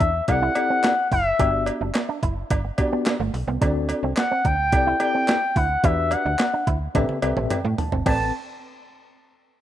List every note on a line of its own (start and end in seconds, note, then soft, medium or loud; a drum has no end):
0.00 0.22 E2 medium
0.00 0.10 D4 medium
0.00 0.25 E5 loud
0.00 kick loud
0.00 closed hi-hat medium
0.28 0.50 C2 loud
0.28 0.50 C4 medium
0.28 0.50 E4 medium
0.28 0.51 G4 medium
0.28 0.51 A4 medium
0.28 0.51 D5 medium
0.28 1.08 F#5 loud
0.28 kick loud
0.28 closed hi-hat loud
0.28 cowbell medium
0.42 0.52 E4 medium
0.55 0.92 C4 medium
0.55 0.92 E4 medium
0.55 0.92 G4 medium
0.55 0.92 A4 medium
0.55 0.92 D5 medium
0.55 muted clean electric guitar stroke soft
0.55 closed hi-hat medium
0.55 cowbell medium
0.70 0.80 C4 medium
0.84 snare loud
0.84 clap medium
0.84 closed hi-hat medium
0.84 cowbell medium
1.12 1.33 F#1 medium
1.12 1.22 E4 medium
1.12 1.64 E5 medium
1.12 kick medium
1.12 open hi-hat medium
1.39 1.71 G1 loud
1.39 1.88 B3 medium
1.39 1.88 D4 medium
1.39 1.88 F#4 medium
1.39 1.49 G4 medium
1.39 1.88 G4 medium
1.39 1.88 D5 medium
1.39 kick loud
1.39 closed hi-hat loud
1.39 cowbell medium
1.66 muted clean electric guitar stroke soft
1.66 closed hi-hat medium
1.66 cowbell medium
1.81 1.92 F#1 medium
1.81 1.91 D4 medium
1.95 muted clean electric guitar stroke soft
1.95 snare loud
1.95 clap loud
1.95 closed hi-hat loud
1.95 cowbell medium
2.09 2.19 D4 medium
2.23 2.44 F#1 medium
2.23 2.33 E4 medium
2.23 kick medium
2.23 closed hi-hat medium
2.50 2.72 G1 loud
2.50 2.61 D4 medium
2.50 kick loud
2.50 closed hi-hat loud
2.50 cowbell medium
2.65 muted clean electric guitar stroke soft
2.78 3.14 B3 loud
2.78 3.14 D4 medium
2.78 3.15 F#4 medium
2.78 3.15 G4 medium
2.78 3.15 D5 loud
2.78 kick loud
2.78 closed hi-hat medium
2.78 cowbell medium
2.92 3.02 B3 medium
3.06 snare loud
3.06 clap medium
3.06 closed hi-hat loud
3.06 cowbell medium
3.20 3.31 G1 loud
3.20 3.30 A3 medium
3.34 3.44 B1 medium
3.34 muted clean electric guitar stroke soft
3.34 open hi-hat medium
3.48 3.58 C2 loud
3.48 3.58 B3 medium
3.61 3.94 D2 loud
3.61 4.10 C4 loud
3.61 4.10 D4 medium
3.61 3.72 D4 medium
3.61 4.10 F#4 medium
3.61 4.10 A4 medium
3.61 4.10 D5 loud
3.61 kick loud
3.61 closed hi-hat loud
3.61 cowbell medium
3.89 muted clean electric guitar stroke soft
3.89 closed hi-hat medium
3.89 cowbell medium
4.03 4.14 C2 medium
4.03 4.13 C4 medium
4.17 4.47 F#5 loud
4.17 muted clean electric guitar stroke soft
4.17 snare loud
4.17 clap loud
4.17 closed hi-hat loud
4.17 cowbell medium
4.31 4.41 C4 medium
4.45 4.74 D2 medium
4.45 4.55 D4 medium
4.45 5.01 G5 loud
4.45 kick loud
4.45 closed hi-hat medium
4.72 4.94 C2 loud
4.72 4.95 C4 medium
4.72 4.95 E4 medium
4.72 4.95 G4 medium
4.72 4.95 A4 medium
4.72 4.95 D5 medium
4.72 kick loud
4.72 closed hi-hat loud
4.72 cowbell medium
4.87 4.97 E4 medium
5.00 5.36 C4 medium
5.00 5.36 E4 medium
5.00 5.37 G4 medium
5.00 5.37 A4 medium
5.00 5.37 D5 medium
5.00 5.58 G5 loud
5.00 muted clean electric guitar stroke soft
5.00 closed hi-hat medium
5.00 cowbell medium
5.14 5.24 C4 medium
5.28 snare loud
5.28 clap medium
5.28 closed hi-hat medium
5.28 cowbell medium
5.56 5.77 D2 loud
5.56 5.66 E4 medium
5.56 5.86 F#5 loud
5.56 kick loud
5.56 open hi-hat medium
5.83 6.16 E2 loud
5.83 6.32 D4 medium
5.83 5.94 E4 medium
5.83 6.32 F#4 medium
5.83 6.32 G4 medium
5.83 6.32 B4 medium
5.83 6.32 E5 medium
5.83 6.14 E5 loud
5.83 kick loud
5.83 closed hi-hat loud
5.83 cowbell medium
6.11 6.67 F#5 loud
6.11 muted clean electric guitar stroke soft
6.11 closed hi-hat medium
6.11 cowbell medium
6.26 6.36 D2 medium
6.26 6.36 D4 medium
6.39 muted clean electric guitar stroke soft
6.39 snare loud
6.39 clap loud
6.39 closed hi-hat loud
6.39 cowbell medium
6.53 6.63 D4 medium
6.67 6.88 D2 medium
6.67 6.77 E4 medium
6.67 kick loud
6.67 closed hi-hat medium
6.94 7.06 A1 loud
6.94 7.17 C4 loud
6.94 7.05 D4 medium
6.94 7.17 G4 medium
6.94 7.17 A4 medium
6.94 7.17 B4 medium
6.94 7.17 E5 loud
6.94 kick loud
6.94 closed hi-hat loud
6.94 high tom medium
6.94 cowbell medium
7.09 muted clean electric guitar stroke soft
7.09 high tom medium
7.22 7.33 C2 loud
7.22 7.59 C4 medium
7.22 7.59 G4 medium
7.22 7.59 A4 medium
7.22 7.59 B4 medium
7.22 7.59 E5 loud
7.22 closed hi-hat medium
7.22 cowbell medium
7.37 7.47 A1 medium
7.37 7.47 C4 medium
7.37 mid tom medium
7.50 7.76 G5 medium
7.50 closed hi-hat medium
7.50 mid tom medium
7.50 cowbell medium
7.65 7.75 A2 loud
7.65 7.75 A3 medium
7.78 8.04 A5 medium
7.78 muted clean electric guitar stroke soft
7.78 floor tom loud
7.78 open hi-hat medium
7.92 8.03 G1 medium
7.92 8.02 C4 medium
7.92 floor tom loud
8.06 8.32 A1 loud
8.06 8.32 C4 medium
8.06 8.23 C4 medium
8.06 8.32 A4 medium
8.06 8.32 B4 medium
8.06 8.32 G5 loud
8.06 8.32 A5 medium
8.06 kick loud
8.06 crash loud
8.06 cowbell medium